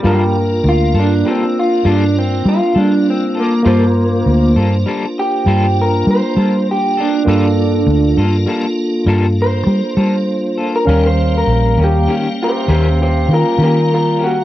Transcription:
<<
  \new Staff \with { instrumentName = "Clean electric guitar" } { \time 12/8 \key g \minor \tempo 4. = 66 g8 r8 f'8 d'8 c'8 f'8 d'8 c'8 f'8 d'8 c'8 bes8~ | bes4. r4 g'4 bes'8 c''4 g'8 d'8~ | d'4. r2 c''2~ c''16 bes'16~ | bes'16 c''8 bes'8. g'8 r8 <g' c''>8 <g' c''>8 <g' c''>8 <f' bes'>8 <f' bes'>8 <f' bes'>8 fis'8 | }
  \new Staff \with { instrumentName = "Tine electric piano" } { \time 12/8 \key g \minor <bes f' bes'>1. | <bes f' c''>1. | <bes f' a'>1. | <g des' f''>1. | }
  \new Staff \with { instrumentName = "Clean electric guitar" } { \time 12/8 \key g \minor <g bes f' a'>8 r4 <bes f' a'>8 <g bes f' a'>8 r8 <g bes f' a'>8 r4 <bes f' a'>8 r8 <bes f' a'>8 | <g bes f' a'>8 r4 <bes f' a'>8 <g bes f' a'>8 r8 <g bes f' a'>8 r4 <bes f' a'>8 r8 <bes f' a'>8 | <g bes f' a'>8 r4 <bes f' a'>8 <g bes f' a'>8 r8 <g bes f' a'>8 r4 <bes f' a'>8 r8 <bes f' a'>8 | <ees bes des' g'>8 r4 <bes des' g'>8 <ees bes des' g'>8 r8 <ees bes des' g'>8 r4 <bes des' g'>8 r8 <bes des' g'>8 | }
  \new Staff \with { instrumentName = "Tonewheel organ" } { \time 12/8 \key g \minor <bes d' f'>1. | <bes d' f'>1. | <bes d' f'>1. | <g bes des' f''>1. | }
  \new Staff \with { instrumentName = "Fingered electric bass" } { \clef bass \time 12/8 \key g \minor g,4 d,8 g,8 r4 g,4 g16 r16 g4. | g,4 d,8 g,8 r4 g,4 g16 r16 g4. | g,4 d,8 g,8 r4 g,4 g16 r16 g4. | ees,4 bes,,8 ees,8 r4 ees,4 ees16 r16 ees4. | }
>>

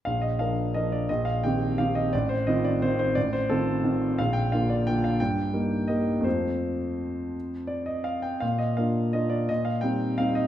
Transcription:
<<
  \new Staff \with { instrumentName = "Grand piano" } { \time 3/4 \key bes \major \tempo 4 = 172 f''8 ees''8 f''4 ees''8 d''8 | ees''8 f''8 g''4 f''8 ees''8 | d''8 c''8 ees''8 d''8 c''8 c''8 | d''8 c''8 a'2 |
f''8 g''8 f''8 d''8 g''8 f''8 | g''2 ees''4 | c''2.~ | c''4 d''8 ees''8 f''8 g''8 |
f''8 ees''8 f''4 ees''8 d''8 | ees''8 f''8 g''4 f''8 ees''8 | }
  \new Staff \with { instrumentName = "Grand piano" } { \time 3/4 \key bes \major bes,,4 <f d' bes'>4 <f d' bes'>4 | bes,,4 <ees c' g'>4 <ees c' g'>4 | a,,4 <ees c' f'>4 <ees c' f'>4 | a,,4 <ees c' f'>4 <ees c' f'>4 |
bes,,4 <d bes f'>4 <d bes f'>4 | g,4 <g bes ees'>4 <g bes ees'>4 | <f, a c' f'>2.~ | <f, a c' f'>2. |
bes,4 <bes d' f'>4 <bes d' f'>4 | bes,4 <g c' ees'>4 <g c' ees'>4 | }
>>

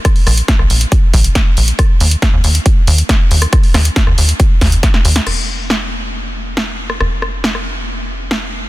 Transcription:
<<
  \new Staff \with { instrumentName = "Analog synth bass" } { \clef bass \time 4/4 \key ees \major \tempo 4 = 138 r8 bes,,16 r8 bes,,16 bes,,16 r8. bes,,16 r8. bes,,16 r16 | r8 ees,16 r8 ees,16 ees,16 r8. ees,16 r8. ees,16 r16 | r8 ees,16 r8 ees,16 ees,16 r8. ees,16 r8. ees,16 r16 | f,,1 |
f,,1 | }
  \new DrumStaff \with { instrumentName = "Drums" } \drummode { \time 4/4 <hh bd ss>16 hho16 <hho ss>16 hh16 <hh bd sn>16 ss16 hho16 hh16 <hh bd>8 <hho bd>16 hh16 <hh bd sn>8 hho16 hh16 | <hh bd ss>8 hho16 hh16 <hh bd sn>8 hho16 hh16 <hh bd>8 hho16 hh16 <hh bd sn>8 hho16 <hh ss>16 | <hh bd ss>16 hho16 <hho ss sn>16 hh16 <hh bd sn>16 ss16 hho16 hh16 <hh bd>8 <hho bd sn>16 hh16 <hh bd sn>16 sn16 hho16 <hh sn>16 | <cymc ss>4 sn4 r4 sn8. ss16 |
ss8 ss8 sn16 ss8. r4 sn4 | }
>>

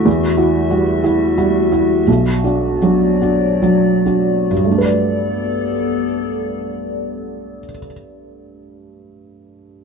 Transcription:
<<
  \new Staff \with { instrumentName = "Ambient pad" } { \time 3/4 \key g \major \tempo 4 = 67 << { <g e''>2. | <fis d''>2. | <b d''>2.~ | <b d''>2. | } \\ { fis'2.~ | fis'2. | a'2.~ | a'2. | } >> }
  \new Staff \with { instrumentName = "Felt piano" } { \time 3/4 \key g \major e,8 <e' fis'>8 <g e' fis'>8 <e' fis'>8 <g e' fis'>8 <e' fis'>8 | b,,8 <d' fis'>8 <fis d' fis'>8 <d' fis'>8 <fis d' fis'>8 <d' fis'>8 | <g, g a d' b' d''>2.~ | <g, g a d' b' d''>2. | }
>>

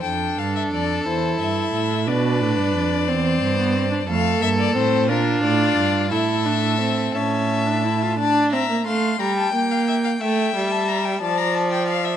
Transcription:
<<
  \new Staff \with { instrumentName = "Violin" } { \time 6/8 \key d \minor \tempo 4. = 59 g''8 f''16 e''16 d''8 c''8 e''4 | d''2. | f''8 e''16 d''16 c''8 bes'8 d''4 | e''4. a''4. |
a''8 bes''8 c'''8 bes''16 a''16 g''16 f''16 e''16 f''16 | g''8. a''16 bes''16 g''16 a''16 bes''16 a''16 g''16 f''16 e''16 | }
  \new Staff \with { instrumentName = "Violin" } { \time 6/8 \key d \minor a'2. | b'4. c''4. | a'4. f'4. | a'4. e''4. |
d''8 e''8 f''8 g''4. | e''4. d''4. | }
  \new Staff \with { instrumentName = "Viola" } { \time 6/8 \key d \minor d'4. e'4. | d'4. c'8. b16 c'16 d'16 | a8 bes8 c'8 d'4. | e'8 d'8 c'8 cis'8. d'16 e'16 f'16 |
d'8 c'16 bes16 a8 g8 bes4 | a8 g4 f4. | }
  \new Staff \with { instrumentName = "Cello" } { \clef bass \time 6/8 \key d \minor f,8 g,8 f,8 e,8 g,8 a,8 | b,8 a,16 g,16 f,8 e,8 g,4 | f,8 g,8 a,8 bes,8 a,8 g,8 | a,4. a,4. |
r2. | r2. | }
>>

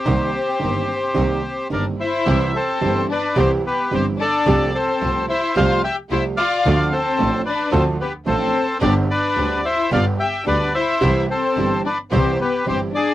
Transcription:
<<
  \new Staff \with { instrumentName = "Bandoneon" } { \time 4/4 \key c \minor \tempo 4 = 109 <g' c''>2. <bes' d''>8 <c'' e''>8~ | \key c \major <c'' e''>8 <a' c''>4 <b' d''>8 <g' c''>8 <g' b'>8 <g' c''>8 <a' d''>8~ | <a' d''>8 <a' c''>4 <c'' e''>8 <c'' f''>8 <e'' g''>8 <c'' e''>8 <d'' f''>8~ | <d'' f''>8 <a' c''>4 <b' d''>8 <a' c''>8 <g' b'>8 <a' c''>4 |
<g' d''>8 <b' d''>4 <c'' e''>8 <d'' f''>8 <e'' g''>8 <b' d''>8 <c'' e''>8~ | <c'' e''>8 <a' c''>4 <b' d''>8 <g' c''>8 <g' b'>8 <g' c''>8 <aes' d''>8 | }
  \new Staff \with { instrumentName = "String section" } { \time 4/4 \key c \minor <c' ees' bes'>8 r8 <c' ees' bes'>8 r8 <c' ees' bes'>8 r8 <c' ees' bes'>8 r8 | \key c \major <c' e' g'>8 r8 <c' e' g'>8 r8 <c' e' g'>8 r8 <c' e' g'>8 r8 | <a f' g'>8 r8 <a f' g'>8 r8 <a f' g'>8 r8 <a f' g'>8 r8 | <a d' f'>8 r8 <a d' f'>8 r8 <a d' f'>8 r8 <a d' f'>8 r8 |
<c' d' g'>8 r8 <c' d' g'>8 r8 <b d' g'>8 r8 <b d' g'>8 r8 | <c' e' g'>8 r8 <c' e' g'>8 r8 <c' e' g'>8 r8 <c' e' g'>8 r8 | }
  \new Staff \with { instrumentName = "Violin section" } { \time 4/4 \key c \minor c'2. d'8 e'8~ | \key c \major e'8 c'4 d'8 c'8 b8 c'8 d'8~ | d'8 c'4 e'8 f'8 g'8 e'8 f'8~ | f'8 c'4 d'8 c'8 b8 c'4 |
d'8 d'4 e'8 f'8 g'8 d'8 e'8~ | e'8 c'4 d'8 c'8 b8 c'8 d'8 | }
  \new Staff \with { instrumentName = "Grand piano" } { \clef bass \time 4/4 \key c \minor <c, c ees bes c' g'>8 r8 <g,, g, ees bes c' g'>8 r8 <c, c ees bes c' g'>8 r8 <g,, g, ees bes c' g'>8 r8 | \key c \major <c, c e g c' g'>8 r8 <g,, g, e g c' g'>8 r8 <c, c e g c' g'>8 r8 <g,, g, e g c' g'>8 r8 | <c, c f a c' g'>8 r8 <c, c f a c' g'>8 r8 <c, c f a c' g'>8 r8 <c, c f a c' g'>8 r8 | <d, d f a d' a'>8 r8 <a,, a, f a d' a'>8 r8 <d, d f a d' a'>8 r8 <a,, a, f a d' a'>8 r8 |
<g,, g, d g c' g'>8 r8 <d, d g c' g'>8 r8 <g,, g, d g b g'>8 r8 <d, d g b g'>8 r8 | <c, c e g c' g'>8 r8 <g,, g, e g c' g'>8 r8 <c, c e g c' g'>8 r8 <g,, g, e g c' g'>8 r8 | }
  \new Staff \with { instrumentName = "Double bass" } { \clef bass \time 4/4 \key c \minor c,8 r8 g,,8 r8 c,8 r8 g,,8 r8 | \key c \major c,8 r8 g,,8 r8 c,8 r8 g,,8 r8 | c,8 r8 c,8 r8 c,8 r8 c,8 r8 | d,8 r8 a,,8 r8 d,8 r8 a,,8 r8 |
g,,8 r8 d,8 r8 g,,8 r8 d,8 r8 | c,8 r8 g,,8 r8 c,8 r8 g,,8 r8 | }
>>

